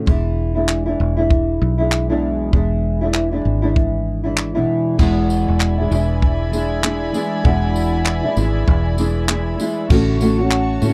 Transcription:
0.06 0.96 E1 loud
0.06 0.56 E3 medium
0.06 0.56 G#3 medium
0.06 0.55 D4 medium
0.06 0.54 E4 medium
0.06 kick loud
0.55 0.88 E3 soft
0.55 0.87 G#3 soft
0.55 0.86 D4 medium
0.55 0.84 E4 medium
0.68 clap medium
0.86 1.18 E3 soft
0.86 1.17 G#3 soft
0.86 1.17 D4 medium
0.86 1.15 E4 medium
1.00 1.57 E1 medium
1.17 1.81 E3 medium
1.17 1.80 G#3 medium
1.17 1.79 D4 medium
1.17 1.77 E4 medium
1.30 kick loud
1.62 2.50 B1 medium
1.78 2.09 E3 soft
1.78 2.09 G#3 medium
1.78 2.09 D4 medium
1.78 2.08 E4 medium
1.92 clap loud
1.92 clap medium
2.09 2.54 E2 medium
2.09 2.54 B2 medium
2.09 2.51 E3 medium
2.09 2.52 G#3 medium
2.09 2.53 D4 medium
2.09 2.53 E4 medium
2.52 3.41 E1 medium
2.52 3.02 E3 medium
2.52 3.02 G#3 medium
2.52 3.01 D4 medium
2.52 3.00 E4 medium
2.52 kick loud
3.01 3.34 E3 soft
3.01 3.32 G#3 medium
3.01 3.31 D4 soft
3.01 3.30 E4 medium
3.14 clap medium
3.32 3.64 E3 soft
3.32 3.63 G#3 soft
3.32 3.62 D4 soft
3.32 3.61 E4 medium
3.45 4.64 G#1 medium
3.62 4.26 E3 soft
3.62 4.25 G#3 medium
3.62 4.24 D4 medium
3.62 4.23 E4 medium
3.76 kick loud
4.24 4.55 E3 medium
4.24 4.54 G#3 medium
4.24 4.54 D4 medium
4.24 4.54 E4 medium
4.37 clap loud
4.37 clap medium
4.55 4.97 E2 medium
4.55 4.97 B2 medium
4.55 4.98 E3 medium
4.55 4.98 G#3 medium
4.55 4.99 D4 medium
4.55 4.98 E4 medium
4.98 5.44 E1 medium
4.98 5.78 E2 medium
4.98 5.79 B2 medium
4.98 5.79 E3 medium
4.98 5.78 G#3 medium
4.98 5.78 D4 medium
4.98 9.86 E4 medium
4.98 5.76 E4 medium
4.98 9.86 D5 medium
4.98 9.86 G#5 medium
4.98 9.86 B5 medium
4.98 kick loud
4.98 crash medium
5.30 tambourine medium
5.48 5.88 E1 medium
5.60 clap medium
5.77 5.89 E3 soft
5.77 5.90 G#3 medium
5.77 5.91 D4 soft
5.77 5.91 E4 soft
5.90 7.10 E1 medium
5.90 6.50 E3 medium
5.90 6.51 G#3 medium
5.90 6.53 D4 medium
5.90 6.53 E4 medium
5.90 tambourine medium
6.22 kick loud
6.51 6.81 E3 medium
6.51 6.82 G#3 medium
6.51 6.83 D4 medium
6.51 6.84 E4 medium
6.51 tambourine medium
6.82 7.11 E3 medium
6.82 7.13 G#3 medium
6.82 7.13 D4 medium
6.82 7.15 E4 medium
6.82 clap medium
6.82 clap loud
7.13 7.43 E3 medium
7.13 7.44 G#3 medium
7.13 7.44 D4 medium
7.13 7.45 E4 medium
7.13 tambourine medium
7.44 8.20 E1 loud
7.44 8.24 E2 medium
7.44 8.24 B2 medium
7.44 8.24 E3 medium
7.44 8.24 G#3 medium
7.44 8.24 D4 medium
7.44 8.22 E4 medium
7.44 kick loud
7.76 tambourine medium
8.05 clap medium
8.23 8.34 E3 soft
8.23 8.35 G#3 soft
8.23 8.36 D4 soft
8.23 8.36 E4 medium
8.35 8.65 G#1 medium
8.35 8.95 E3 medium
8.35 8.97 G#3 medium
8.35 8.99 D4 medium
8.35 8.99 E4 medium
8.35 tambourine medium
8.68 9.55 E1 loud
8.68 kick loud
8.97 9.26 E3 medium
8.97 9.27 G#3 medium
8.97 9.28 D4 medium
8.97 9.29 E4 medium
8.97 tambourine medium
9.27 9.57 E3 medium
9.27 9.58 G#3 medium
9.27 9.59 D4 medium
9.27 9.60 E4 medium
9.27 clap loud
9.27 clap medium
9.58 9.89 E3 medium
9.58 9.90 G#3 medium
9.58 9.90 D4 medium
9.58 9.91 E4 medium
9.58 tambourine medium
9.89 10.78 A1 loud
9.89 10.20 A2 medium
9.89 10.19 D3 medium
9.89 10.20 A3 medium
9.89 10.21 C#4 medium
9.89 10.93 F#4 medium
9.89 10.21 F#4 medium
9.89 10.93 C#5 medium
9.89 10.93 A5 medium
9.89 10.93 C#6 medium
9.89 kick loud
9.89 crash loud
10.20 10.39 D3 medium
10.20 10.39 A3 medium
10.20 10.39 C#4 medium
10.20 10.37 F#4 medium
10.20 tambourine medium
10.38 10.81 A3 medium
10.38 10.82 C#4 medium
10.38 10.81 F#4 medium
10.51 clap loud
10.51 clap medium
10.81 10.93 A2 medium
10.81 10.93 D3 medium
10.81 10.93 A3 medium
10.81 10.93 C#4 medium
10.81 10.93 F#4 medium
10.81 tambourine medium

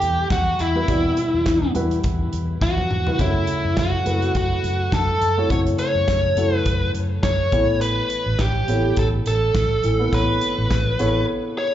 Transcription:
0.00 0.26 E2 medium
0.00 0.89 B2 medium
0.00 0.75 G3 medium
0.00 0.75 E4 medium
0.00 0.76 F#4 medium
0.00 0.27 G4 medium
0.00 0.40 A4 medium
0.00 0.76 B4 medium
0.00 closed hi-hat medium
0.30 0.54 E2 medium
0.30 0.61 F#4 medium
0.30 kick loud
0.30 snare medium
0.30 closed hi-hat medium
0.59 0.83 E2 medium
0.59 1.71 E4 medium
0.59 closed hi-hat medium
0.75 0.86 G3 medium
0.75 0.86 E4 medium
0.75 0.86 F#4 medium
0.75 0.86 B4 medium
0.88 1.12 E2 medium
0.88 1.71 B2 soft
0.88 1.61 G3 medium
0.88 1.61 E4 medium
0.88 1.61 F#4 medium
0.88 1.61 D5 medium
0.88 kick medium
0.88 closed hi-hat medium
1.17 closed hi-hat medium
1.34 1.44 E2 medium
1.46 1.70 E2 medium
1.46 kick medium
1.46 snare medium
1.46 closed hi-hat medium
1.75 1.99 E2 medium
1.75 2.71 G3 medium
1.75 2.71 E4 medium
1.75 2.71 F#4 medium
1.75 2.71 B4 medium
1.75 closed hi-hat medium
1.91 closed hi-hat soft
2.04 2.28 E2 medium
2.04 kick medium
2.04 closed hi-hat medium
2.33 2.57 E2 medium
2.33 closed hi-hat medium
2.61 2.85 E2 medium
2.61 3.21 F#4 medium
2.61 kick medium
2.61 snare soft
2.78 high tom soft
2.91 3.14 E2 medium
2.91 mid tom medium
3.07 3.17 G3 medium
3.07 3.17 E4 medium
3.07 3.17 F#4 medium
3.07 3.17 B4 medium
3.07 floor tom medium
3.19 3.43 F#2 medium
3.19 4.02 C#3 medium
3.19 3.92 A3 medium
3.19 3.92 E4 medium
3.19 3.79 E4 medium
3.19 3.92 F#4 medium
3.19 3.93 C#5 medium
3.19 kick medium
3.19 closed hi-hat medium
3.47 closed hi-hat medium
3.65 3.75 F#2 medium
3.77 4.01 F#2 medium
3.77 4.35 F#4 medium
3.77 kick medium
3.77 snare loud
3.77 closed hi-hat medium
4.05 4.30 F#2 medium
4.05 5.02 A3 medium
4.05 5.02 E4 soft
4.05 5.02 F#4 medium
4.05 5.02 B4 medium
4.05 closed hi-hat medium
4.22 closed hi-hat soft
4.35 4.59 F#2 medium
4.35 4.95 F#4 medium
4.35 kick medium
4.35 closed hi-hat medium
4.64 4.88 F#2 medium
4.64 closed hi-hat medium
4.92 5.16 F#2 medium
4.92 5.51 A4 medium
4.92 kick medium
4.92 snare loud
4.92 closed hi-hat medium
5.21 5.45 F#2 medium
5.21 closed hi-hat medium
5.37 5.48 A3 medium
5.37 5.48 E4 medium
5.37 5.48 F#4 soft
5.37 5.49 C#5 medium
5.50 5.74 F#2 medium
5.50 6.33 C#3 medium
5.50 6.23 A3 medium
5.50 6.24 E4 medium
5.50 6.24 F#4 medium
5.50 5.59 C#5 medium
5.50 6.24 C#5 medium
5.50 kick medium
5.50 closed hi-hat medium
5.67 closed hi-hat soft
5.78 6.56 C#5 medium
5.78 closed hi-hat medium
5.95 6.06 F#2 medium
6.08 6.32 F#2 medium
6.08 kick medium
6.08 snare medium
6.08 closed hi-hat medium
6.36 6.60 F#2 medium
6.36 7.33 A3 medium
6.36 7.33 E4 medium
6.36 7.33 F#4 medium
6.36 7.33 A4 medium
6.36 closed hi-hat medium
6.56 6.91 B4 medium
6.65 6.90 F#2 medium
6.65 kick medium
6.65 closed hi-hat medium
6.94 7.18 F#2 medium
6.94 closed hi-hat medium
7.23 7.47 F#2 medium
7.23 7.81 C#5 medium
7.23 kick medium
7.23 snare loud
7.23 closed hi-hat medium
7.52 8.00 A1 medium
7.52 8.35 A2 medium
7.52 8.35 E3 medium
7.52 8.48 B3 medium
7.52 8.49 E4 medium
7.52 8.49 A4 medium
7.52 8.49 C#5 medium
7.52 kick medium
7.52 closed hi-hat medium
7.81 8.41 B4 medium
7.81 closed hi-hat medium
8.10 closed hi-hat medium
8.26 8.37 A1 medium
8.39 8.63 A1 medium
8.39 8.99 G4 medium
8.39 kick medium
8.39 snare medium
8.39 closed hi-hat medium
8.68 8.92 A1 medium
8.68 9.64 B3 medium
8.68 9.64 E4 soft
8.68 9.64 A4 medium
8.68 9.65 C#5 medium
8.68 closed hi-hat medium
8.97 9.21 A1 medium
8.97 9.07 A4 medium
8.97 kick medium
8.97 closed hi-hat medium
9.26 9.50 A1 medium
9.26 10.16 A4 medium
9.26 closed hi-hat medium
9.55 9.78 A1 medium
9.55 kick loud
9.55 snare loud
9.55 closed hi-hat medium
9.83 10.08 A1 medium
9.83 10.66 A2 medium
9.83 10.66 E3 medium
9.83 closed hi-hat medium
9.99 10.10 B3 medium
9.99 10.10 E4 medium
9.99 10.10 A4 medium
9.99 10.11 B4 medium
10.12 10.36 A1 medium
10.12 10.85 B3 medium
10.12 10.86 E4 medium
10.12 10.86 A4 medium
10.12 11.25 B4 medium
10.12 10.86 C#5 medium
10.12 kick medium
10.12 closed hi-hat medium
10.41 closed hi-hat medium
10.58 10.68 A1 medium
10.70 10.94 A1 medium
10.70 kick medium
10.70 snare medium
10.70 closed hi-hat medium
10.99 11.24 A1 medium
10.99 11.74 B3 medium
10.99 11.74 E4 medium
10.99 11.74 A4 medium
10.99 11.74 C#5 medium
10.99 closed hi-hat medium
11.58 11.74 C#5 medium

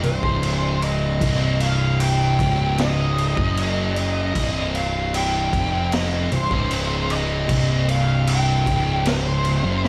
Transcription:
0.03 0.22 C1 medium
0.03 0.24 C2 medium
0.03 0.83 C5 medium
0.03 crash medium
0.23 1.17 C#1 loud
0.23 1.21 C#2 loud
0.23 kick loud
0.43 crash medium
0.82 1.64 D#5 medium
0.82 crash medium
1.21 2.35 C1 medium
1.21 2.39 C2 loud
1.21 kick loud
1.21 crash medium
1.60 1.97 F5 medium
1.60 crash medium
2.00 2.81 G5 medium
2.00 crash medium
2.39 3.33 C#1 medium
2.39 3.37 C#2 loud
2.39 kick loud
2.39 crash medium
2.78 3.93 D#5 medium
2.78 snare loud
2.78 crash medium
3.18 crash medium
3.37 4.32 F#1 medium
3.37 4.35 F#2 loud
3.37 kick loud
3.57 crash medium
3.96 4.78 D#5 medium
3.96 crash medium
4.35 5.49 C1 medium
4.35 5.52 C2 loud
4.35 kick loud
4.35 crash medium
4.75 5.12 F5 medium
4.75 crash medium
5.14 5.95 G5 medium
5.14 crash medium
5.53 6.27 F1 medium
5.53 6.31 F2 loud
5.53 kick medium
5.53 crash medium
5.92 6.32 D#5 medium
5.92 snare loud
5.92 crash medium
6.32 6.50 C1 medium
6.32 6.52 C2 medium
6.32 7.11 C5 medium
6.32 crash medium
6.51 7.45 C#1 medium
6.51 7.48 C#2 loud
6.51 kick loud
6.71 crash medium
7.10 7.85 D#5 loud
7.10 crash medium
7.49 8.63 C1 medium
7.49 8.66 C2 loud
7.49 kick loud
7.49 crash medium
7.89 8.29 F5 medium
7.89 crash medium
8.27 9.09 G5 loud
8.27 crash medium
8.66 9.60 C#1 medium
8.66 9.63 C#2 loud
8.66 kick loud
8.66 crash medium
9.06 9.88 C5 medium
9.06 snare loud
9.06 crash medium
9.45 crash medium
9.64 9.88 F#1 medium
9.64 9.88 F#2 loud
9.85 snare medium

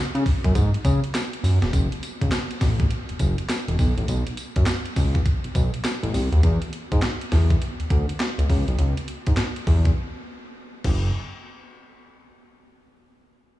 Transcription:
0.15 0.24 C#3 loud
0.15 closed hi-hat soft
0.26 kick loud
0.26 open hi-hat medium
0.44 0.54 F#2 medium
0.44 kick loud
0.44 closed hi-hat medium
0.55 0.71 G#2 loud
0.55 kick loud
0.55 closed hi-hat medium
0.55 tambourine medium
0.74 closed hi-hat soft
0.85 1.00 C#3 loud
0.85 kick loud
0.85 closed hi-hat medium
0.85 tambourine medium
1.04 closed hi-hat medium
1.15 snare loud
1.15 clap medium
1.15 closed hi-hat medium
1.15 tambourine loud
1.33 closed hi-hat medium
1.43 1.59 F#2 medium
1.43 open hi-hat medium
1.43 tambourine medium
1.62 1.71 E1 loud
1.62 snare medium
1.62 closed hi-hat soft
1.73 1.89 F#1 loud
1.73 kick loud
1.73 closed hi-hat medium
1.73 tambourine medium
1.92 closed hi-hat medium
2.03 closed hi-hat medium
2.03 tambourine medium
2.21 2.30 C#2 medium
2.21 kick loud
2.21 closed hi-hat medium
2.32 snare loud
2.32 clap loud
2.32 closed hi-hat medium
2.32 tambourine medium
2.51 closed hi-hat soft
2.61 2.86 A1 loud
2.61 kick loud
2.61 snare medium
2.61 open hi-hat medium
2.61 tambourine medium
2.80 kick loud
2.80 closed hi-hat soft
2.91 closed hi-hat medium
3.09 3.14 F#1 soft
3.09 closed hi-hat soft
3.19 3.36 F#1 medium
3.19 kick medium
3.19 closed hi-hat medium
3.19 tambourine medium
3.38 closed hi-hat medium
3.49 snare loud
3.49 clap medium
3.49 closed hi-hat medium
3.49 tambourine loud
3.68 3.77 E1 medium
3.68 closed hi-hat medium
3.79 3.95 B1 medium
3.79 kick medium
3.79 open hi-hat medium
3.79 tambourine medium
3.97 4.07 A1 medium
3.97 closed hi-hat soft
4.08 4.24 B1 loud
4.08 closed hi-hat medium
4.08 tambourine medium
4.27 closed hi-hat medium
4.37 closed hi-hat medium
4.37 tambourine medium
4.56 4.65 F#2 medium
4.56 kick loud
4.56 closed hi-hat medium
4.66 snare loud
4.66 clap medium
4.66 closed hi-hat medium
4.66 tambourine loud
4.86 closed hi-hat soft
4.96 5.21 C#2 loud
4.96 kick loud
4.96 open hi-hat medium
4.96 tambourine medium
5.15 kick loud
5.15 closed hi-hat medium
5.26 kick loud
5.26 closed hi-hat medium
5.44 5.49 B1 medium
5.44 closed hi-hat soft
5.55 5.71 B1 loud
5.55 kick medium
5.55 closed hi-hat medium
5.55 tambourine medium
5.74 closed hi-hat medium
5.85 snare loud
5.85 clap medium
5.85 closed hi-hat medium
5.85 tambourine loud
6.03 6.12 A1 loud
6.03 closed hi-hat medium
6.14 6.29 C2 medium
6.14 open hi-hat medium
6.14 tambourine medium
6.32 6.41 D#2 medium
6.32 closed hi-hat medium
6.43 6.59 E2 loud
6.43 kick loud
6.43 closed hi-hat medium
6.62 closed hi-hat medium
6.73 closed hi-hat medium
6.92 7.01 G#2 medium
6.92 kick loud
6.92 closed hi-hat medium
7.02 snare loud
7.02 clap medium
7.02 closed hi-hat medium
7.21 closed hi-hat medium
7.32 7.57 E2 loud
7.32 kick loud
7.32 snare medium
7.32 open hi-hat medium
7.50 kick loud
7.50 closed hi-hat medium
7.62 closed hi-hat medium
7.79 7.84 D2 medium
7.79 closed hi-hat soft
7.90 8.06 D2 medium
7.90 kick medium
7.90 closed hi-hat medium
8.09 closed hi-hat medium
8.20 snare loud
8.20 clap medium
8.20 closed hi-hat medium
8.38 8.48 C#2 medium
8.38 closed hi-hat medium
8.50 8.65 C#2 medium
8.50 kick medium
8.50 open hi-hat medium
8.68 8.77 B1 medium
8.68 closed hi-hat soft
8.78 8.94 C#2 loud
8.78 closed hi-hat medium
8.97 closed hi-hat medium
9.08 closed hi-hat medium
9.27 9.36 G#2 medium
9.27 kick loud
9.27 closed hi-hat medium
9.37 snare loud
9.37 clap medium
9.37 closed hi-hat medium
9.56 closed hi-hat soft
9.67 9.92 E2 loud
9.67 kick medium
9.67 open hi-hat medium
9.85 kick loud
9.85 closed hi-hat soft
10.84 11.12 F#1 loud
10.84 kick loud
10.84 crash medium

